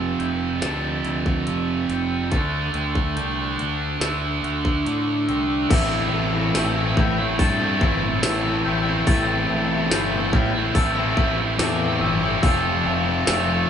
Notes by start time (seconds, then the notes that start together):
Already playing: F1 F2 C3 F3 C4 A4 E6
0.20 F1 E4 G6, closed hi-hat
0.62 D2 F2 C3 F3 A4 A6, snare, closed hi-hat
1.05 D2 E4, closed hi-hat
1.26 kick
1.47 F1 F3 E6, closed hi-hat
1.89 F1 C4 G6, closed hi-hat
2.31 D2 D3 A3 D4 A6, kick, closed hi-hat
2.74 D2 C4, closed hi-hat
2.95 kick
3.16 C2 D3 G6, closed hi-hat
3.58 D2 F#4 F#6, closed hi-hat
4.00 D2 D3 A3 D4 A4 E6, snare, closed hi-hat
4.44 D2 F#4, closed hi-hat
4.65 kick
4.85 A2 D3 D6, closed hi-hat
5.27 C2 C4 E6, closed hi-hat
5.69 A1 A2 E3 A3 C4 E4 E6, kick, open hi-hat, crash
6.13 A1 A3
6.33 A3 C4 E4
6.54 A1 A2 E3 A3 C4 E4 E6, snare, open hi-hat
6.75 A3 C4 E4
6.96 A1 E3 A3 C4 E4 G6, muted distorted electric guitar stroke, kick
7.18 A3 C4 E4, muted distorted electric guitar stroke
7.39 G2 A4 A6, kick, open hi-hat
7.60 A3 C4 E4
7.81 G1 E3 A3 C4 E4, kick
8.02 muted distorted electric guitar stroke
8.23 A1 A2 E3 A3 C4 E4 E6, snare, open hi-hat
8.44 A3 C4 E4
8.64 A1 E3 A3 C4 E4 G6
8.85 A3 C4 E4
9.06 A1 A2 E3 A3 C4 E4 A6, kick, open hi-hat
9.50 A1 A3
9.69 A3 C4 E4
9.91 G1 A2 E3 A3 C4 E4 G6, snare, open hi-hat
10.11 A3 C4 E4
10.32 A1 E3 A3 C4 E4 F6, muted distorted electric guitar stroke, kick
10.54 A3 C4 E4, muted distorted electric guitar stroke
10.74 A1 A4 E6, kick, open hi-hat
10.96 A3 C4 E4
11.17 A1 E3 A3 C4 E4, kick
11.38 muted distorted electric guitar stroke
11.58 E2 A2 E3 A3 C4 E4 D6, snare, open hi-hat
11.80 A3 C4 E4
12.00 G1 E3 A3 C4 E4 E6
12.22 A3 C4 E4
12.42 F1 F3 A3 C4 F4 E6, kick, open hi-hat
12.85 F1 A3
13.05 A3 C4 F4
13.26 F1 F3 A3 C4 F4 E6, snare, open hi-hat
13.48 A3 C4 F4